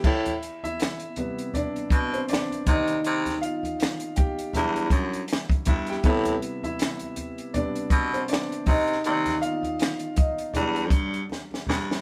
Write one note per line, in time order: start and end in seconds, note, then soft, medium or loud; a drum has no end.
0.04 0.36 A2 loud
0.04 0.60 E4 medium
0.04 0.62 E5 loud
0.04 kick loud
0.04 crash medium
0.26 closed hi-hat soft
0.26 muted conga soft
0.26 high conga medium
0.43 closed hi-hat medium
0.63 1.51 E4 medium
0.63 1.57 E5 loud
0.63 closed hi-hat soft
0.63 high conga medium
0.80 finger snap medium
0.80 snare loud
0.80 closed hi-hat medium
0.80 muted conga soft
1.00 closed hi-hat soft
1.16 1.69 C3 medium
1.16 1.69 G3 soft
1.16 1.70 B3 medium
1.16 closed hi-hat medium
1.16 high conga medium
1.39 closed hi-hat soft
1.54 2.10 D4 medium
1.54 2.09 D5 medium
1.54 closed hi-hat medium
1.54 muted conga soft
1.54 high conga medium
1.54 low conga medium
1.76 closed hi-hat soft
1.90 2.23 B2 medium
1.90 kick medium
1.90 closed hi-hat medium
2.14 2.29 C4 medium
2.14 2.30 C5 medium
2.14 closed hi-hat soft
2.28 2.65 D4 medium
2.28 2.64 D5 medium
2.28 closed hi-hat medium
2.28 muted conga soft
2.33 finger snap medium
2.33 snare loud
2.51 closed hi-hat soft
2.51 muted conga soft
2.66 2.99 C3 medium
2.66 4.51 D#3 medium
2.66 4.51 A#3 soft
2.66 3.39 D#4 medium
2.66 4.51 D5 medium
2.66 3.44 D#5 medium
2.66 kick medium
2.66 closed hi-hat medium
2.66 high conga soft
2.66 low conga medium
2.87 closed hi-hat soft
3.04 3.37 C3 loud
3.04 closed hi-hat medium
3.26 snare soft
3.26 closed hi-hat soft
3.26 high conga medium
3.42 4.14 F4 medium
3.42 4.19 F5 medium
3.42 closed hi-hat medium
3.63 closed hi-hat soft
3.63 high conga medium
3.79 snare loud
3.79 closed hi-hat medium
3.79 muted conga soft
3.83 finger snap medium
4.00 closed hi-hat soft
4.16 4.53 G4 medium
4.16 4.51 G5 medium
4.16 kick medium
4.16 closed hi-hat medium
4.16 high conga medium
4.39 closed hi-hat medium
4.53 4.87 E2 loud
4.53 5.07 F#3 medium
4.53 5.07 G3 soft
4.53 5.07 D4 medium
4.53 5.26 E4 medium
4.53 5.25 E5 medium
4.53 closed hi-hat medium
4.53 muted conga soft
4.53 high conga medium
4.53 low conga medium
4.76 closed hi-hat soft
4.90 5.23 F#2 medium
4.90 kick medium
4.90 closed hi-hat medium
5.13 closed hi-hat soft
5.28 closed hi-hat medium
5.33 finger snap medium
5.33 snare medium
5.50 kick medium
5.50 closed hi-hat soft
5.50 muted conga soft
5.65 5.99 G2 medium
5.65 5.88 E4 medium
5.65 5.89 E5 medium
5.65 kick medium
5.65 closed hi-hat medium
5.65 high conga medium
5.65 low conga medium
5.87 5.95 G5 medium
5.87 closed hi-hat soft
5.91 5.96 G4 medium
5.91 snare soft
6.04 6.36 A2 loud
6.04 7.13 C3 medium
6.04 7.13 G3 medium
6.04 7.14 B3 medium
6.04 6.61 E4 medium
6.04 6.62 E5 loud
6.04 kick loud
6.04 closed hi-hat medium
6.25 closed hi-hat soft
6.25 high conga medium
6.42 closed hi-hat medium
6.63 7.51 E4 medium
6.63 7.50 E5 medium
6.63 closed hi-hat soft
6.63 high conga medium
6.79 finger snap medium
6.79 snare loud
6.79 closed hi-hat medium
6.79 muted conga soft
6.99 closed hi-hat soft
6.99 muted conga soft
7.16 closed hi-hat medium
7.16 high conga medium
7.38 closed hi-hat medium
7.54 7.88 C3 soft
7.54 7.88 G3 soft
7.54 7.88 B3 soft
7.54 8.10 D4 medium
7.54 8.09 D5 medium
7.54 closed hi-hat medium
7.54 high conga medium
7.54 low conga medium
7.75 closed hi-hat soft
7.90 8.23 B2 loud
7.90 kick medium
7.90 closed hi-hat medium
8.14 8.20 C4 medium
8.14 8.19 C5 medium
8.14 closed hi-hat soft
8.28 8.65 D4 medium
8.28 8.68 D5 medium
8.28 closed hi-hat medium
8.33 finger snap medium
8.33 snare loud
8.52 closed hi-hat soft
8.66 8.99 C3 loud
8.66 9.39 D#4 medium
8.66 9.44 D#5 loud
8.66 kick medium
8.66 open hi-hat soft
8.66 high conga medium
8.66 low conga medium
8.87 closed hi-hat soft
8.92 snare soft
9.04 9.37 C3 loud
9.04 9.57 D#3 medium
9.04 9.57 A#3 soft
9.04 9.57 D5 medium
9.04 closed hi-hat medium
9.26 snare soft
9.26 closed hi-hat soft
9.26 high conga medium
9.42 10.14 F4 medium
9.42 10.13 F5 loud
9.42 closed hi-hat medium
9.63 closed hi-hat soft
9.63 high conga medium
9.79 snare loud
9.79 closed hi-hat medium
9.79 muted conga soft
9.83 finger snap medium
9.99 closed hi-hat soft
10.16 10.53 D#4 medium
10.16 10.55 D#5 medium
10.16 kick medium
10.16 closed hi-hat medium
10.16 high conga medium
10.38 closed hi-hat soft
10.54 10.93 E2 loud
10.54 11.63 F#3 medium
10.54 11.63 G3 soft
10.54 11.26 D4 medium
10.54 11.25 D5 medium
10.54 closed hi-hat medium
10.54 muted conga soft
10.54 high conga medium
10.54 low conga medium
10.76 closed hi-hat soft
10.90 11.23 G2 medium
10.90 kick medium
10.90 closed hi-hat medium
11.14 closed hi-hat soft
11.29 snare medium
11.29 muted conga soft
11.51 snare medium
11.51 muted conga soft
11.67 11.99 G2 medium
11.67 snare medium
11.67 high conga soft
11.67 low conga medium
11.91 snare medium